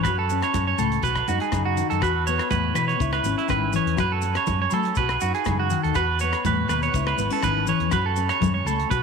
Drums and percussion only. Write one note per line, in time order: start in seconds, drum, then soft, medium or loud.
0.04 kick medium
0.04 cross-stick medium
0.04 closed hi-hat soft
0.04 muted conga soft
0.04 low agogo medium
0.04 maracas medium
0.29 closed hi-hat soft
0.29 maracas medium
0.42 cross-stick medium
0.42 closed hi-hat soft
0.42 low agogo medium
0.42 maracas soft
0.54 kick medium
0.54 closed hi-hat medium
0.54 high conga loud
0.54 maracas medium
0.78 closed hi-hat soft
0.78 low agogo medium
0.78 maracas medium
0.92 closed hi-hat soft
0.92 maracas soft
1.02 kick medium
1.02 closed hi-hat soft
1.02 muted conga soft
1.02 maracas medium
1.16 kick medium
1.16 cross-stick medium
1.16 low agogo medium
1.27 closed hi-hat soft
1.27 high conga medium
1.27 maracas medium
1.40 closed hi-hat soft
1.40 maracas soft
1.52 kick medium
1.52 cross-stick medium
1.52 closed hi-hat soft
1.52 high conga medium
1.52 low agogo medium
1.52 maracas medium
1.77 closed hi-hat soft
1.77 maracas medium
1.90 closed hi-hat soft
1.90 maracas soft
2.01 kick medium
2.01 cross-stick medium
2.01 closed hi-hat soft
2.01 muted conga soft
2.01 low agogo medium
2.01 maracas medium
2.27 closed hi-hat soft
2.27 maracas medium
2.38 cross-stick medium
2.38 closed hi-hat soft
2.38 low agogo medium
2.51 kick medium
2.51 closed hi-hat soft
2.51 high conga medium
2.51 maracas medium
2.75 cross-stick medium
2.75 closed hi-hat soft
2.75 low agogo medium
2.75 maracas medium
2.89 closed hi-hat soft
2.89 maracas soft
2.99 kick medium
2.99 closed hi-hat soft
2.99 muted conga soft
2.99 maracas medium
3.13 cross-stick medium
3.13 low agogo medium
3.24 closed hi-hat soft
3.24 muted conga soft
3.24 high conga medium
3.24 maracas medium
3.38 closed hi-hat soft
3.48 kick medium
3.48 cross-stick medium
3.48 closed hi-hat soft
3.48 high conga medium
3.48 low agogo medium
3.48 maracas medium
3.73 closed hi-hat soft
3.73 muted conga soft
3.73 maracas medium
3.87 closed hi-hat soft
3.97 kick medium
3.97 cross-stick medium
3.97 closed hi-hat medium
3.97 muted conga soft
3.97 low agogo medium
3.97 maracas medium
4.22 closed hi-hat medium
4.22 maracas medium
4.34 cross-stick medium
4.34 closed hi-hat medium
4.34 low agogo medium
4.46 kick medium
4.46 closed hi-hat medium
4.46 high conga medium
4.46 maracas medium
4.70 closed hi-hat soft
4.70 low agogo medium
4.70 maracas medium
4.83 closed hi-hat soft
4.83 maracas soft
4.95 kick medium
4.95 closed hi-hat soft
4.95 muted conga soft
4.95 maracas medium
5.09 cross-stick medium
5.09 low agogo medium
5.21 closed hi-hat soft
5.21 muted conga soft
5.21 maracas medium
5.34 closed hi-hat soft
5.45 kick medium
5.45 cross-stick medium
5.45 closed hi-hat soft
5.45 high conga medium
5.45 low agogo medium
5.45 maracas medium
5.70 closed hi-hat soft
5.70 muted conga soft
5.70 maracas medium
5.84 closed hi-hat soft
5.94 kick medium
5.94 cross-stick medium
5.94 closed hi-hat soft
5.94 muted conga soft
5.94 low agogo medium
5.94 maracas medium
6.19 closed hi-hat soft
6.19 maracas medium
6.32 cross-stick medium
6.32 closed hi-hat soft
6.32 low agogo medium
6.45 kick medium
6.45 closed hi-hat soft
6.45 high conga loud
6.45 maracas medium
6.68 cross-stick medium
6.68 closed hi-hat soft
6.68 low agogo medium
6.68 maracas medium
6.82 closed hi-hat soft
6.82 maracas soft
6.93 kick medium
6.93 closed hi-hat soft
6.93 muted conga soft
6.93 maracas medium
7.07 cross-stick medium
7.07 low agogo medium
7.18 closed hi-hat soft
7.18 muted conga soft
7.18 high conga medium
7.18 maracas loud
7.31 closed hi-hat soft
7.43 kick medium
7.43 cross-stick medium
7.43 closed hi-hat soft
7.43 high conga medium
7.43 low agogo medium
7.43 maracas medium
7.67 closed hi-hat soft
7.67 muted conga soft
7.67 maracas medium
7.80 closed hi-hat soft
7.91 kick medium
7.91 cross-stick medium
7.91 closed hi-hat soft
7.91 low agogo medium
7.91 maracas medium
7.96 muted conga soft
8.16 closed hi-hat soft
8.16 maracas medium
8.29 cross-stick medium
8.29 closed hi-hat soft
8.29 low agogo medium
8.29 maracas soft
8.41 kick medium
8.41 closed hi-hat soft
8.41 high conga medium
8.41 low conga medium
8.41 maracas medium
8.66 closed hi-hat soft
8.66 low agogo medium
8.66 maracas medium
8.79 closed hi-hat medium
8.91 kick medium
8.91 closed hi-hat soft
8.91 muted conga soft
8.91 maracas medium